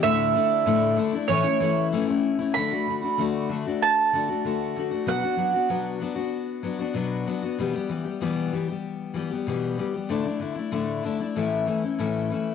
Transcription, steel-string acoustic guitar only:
X:1
M:4/4
L:1/16
Q:1/4=95
K:D
V:1 name="Steel-string acoustic guitar"
[A,,D,A,DE]2 [D,A,DE]2 [A,,D,A,DE]2 [D,A,DE] [A,DE] [A,,E,A,CE] [A,CE] [E,A,CE]2 [A,,E,A,CE] [A,CE]2 [A,CE] | [D,A,DF] [A,DF] [D,A,DF] [A,DF] [D,A,DF]2 [D,A,DF] [A,DF]3 [D,A,DF] [A,DF] [D,A,DF]2 [D,A,DF] [A,DF] | [B,,F,B,DF] [B,DF] [F,B,DF] [B,DF] [B,,F,B,DF]2 [F,B,DF] [B,DF]3 [F,B,DF] [B,DF] [B,,F,B,DF]2 [F,B,DF] [B,DF] | [B,,E,G,B,G] [G,B,G] [E,G,B,G] [G,B,G] [B,,E,G,B,G]2 [E,G,B,G] [G,B,G]3 [E,G,B,G] [G,B,G] [B,,E,G,B,G]2 [E,G,B,G] [G,B,G] |
[A,,D,A,DE] [A,DE] [D,A,DE] [A,DE] [A,,D,A,DE]2 [D,A,DE] [A,DE] [A,,E,A,CE]2 [E,A,CE] [A,CE] [A,,E,A,CE]2 [E,A,CE]2 |]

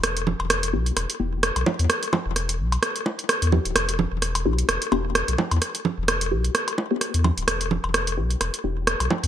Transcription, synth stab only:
X:1
M:4/4
L:1/16
Q:"Swing 16ths" 1/4=129
K:Em
V:1 name="Synth stab"
z6 [B,DEG] z3 [B,DEG] z4 z | z12 z2 [B,DEG] z | z6 [B,DEG] z3 [B,DEG] z4 z | z6 [B,DEG] z4 [B,DEG] z4 |
z6 [B,DEG] z3 [B,DEG] z4 z |]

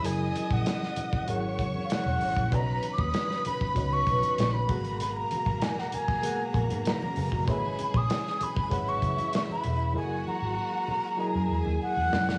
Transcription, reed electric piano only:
X:1
M:4/4
L:1/8
Q:1/4=97
K:F#mix
V:1 name="Reed electric piano"
[F,EGAd]3 z [F,EGAf]3 z | [B,FBc=d^d]3 z [B,FBcd]3 [G,B,FGf]- | [G,B,FGf]2 z2 [G,B,GAf]3 z | [G,GBcde]3 z [G,GBcef]3 z |
[F,EGAd]3 z [F,EGAd]3 z |]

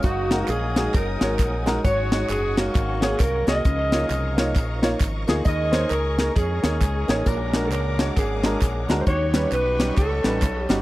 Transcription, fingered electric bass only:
X:1
M:4/4
L:1/8
Q:"Swing" 1/4=133
K:Ebdor
V:1 name="Fingered electric bass" clef=bass
G,,,2 B,,,2 G,,, A,,, B,,,2 | A,,,2 G,,,2 A,,,2 C,, C,, | D,,2 C,,2 B,,,2 A,,, =D,, | E,,2 D,,2 F,, E,, D,, =A,,, |
B,,,2 ^C,,2 A,,,2 B,,, =D,, | E,,2 =B,,,2 D,, =A,,, B,,, =G,,, |]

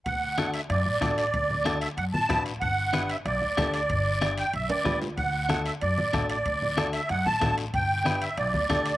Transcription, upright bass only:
X:1
M:4/4
L:1/8
Q:1/4=188
K:Dmix
V:1 name="Upright bass" clef=bass
D,,4 F,, A,,, A,,,2 | D,,4 F,, A,,, A,,,2 | G,,,4 B,,, D,, D,,2 | G,,,4 B,,, D,, D,,2 |
D,,4 F,, A,,, A,,,2 | D,,4 F,, A,,, A,,,2 | G,,,4 B,,, D,, D,,2 |]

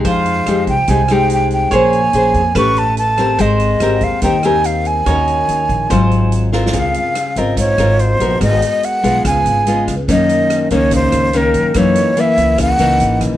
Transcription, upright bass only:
X:1
M:4/4
L:1/8
Q:1/4=144
K:Ab
V:1 name="Upright bass" clef=bass
F,,2 F,, C,, C,,4 | B,,,2 B,,, F,, =A,,,4 | A,,,2 A,,, E,, E,,4 | E,,2 E,, B,,, A,,,4 |
[K:Db] D,, z2 A,,,2 A,,,2 B,,, | A,,, z2 _C,, D,, A,,,2 D,, | G,, z2 D,,2 D,,2 G,, | G,, z2 D,,2 D,, A,,, B,,, |]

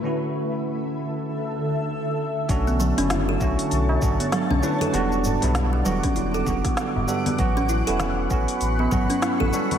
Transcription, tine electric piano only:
X:1
M:4/4
L:1/16
Q:"Swing 16ths" 1/4=98
K:Bm
V:1 name="Tine electric piano"
[D,A,CEF]16 | [A,CDF]3 [D,A,CE]3 [D,A,CF]4 [A,CDF]4 [A,CDB]2 | [G,B,DF]3 [G,B,DE]3 [D,B,F]4 [D,B,F]4 [G,B,DA]2 | [B,CF]3 [B,CE]3 [B,CF]4 [B,CF]4 [G,B,CA]2 |]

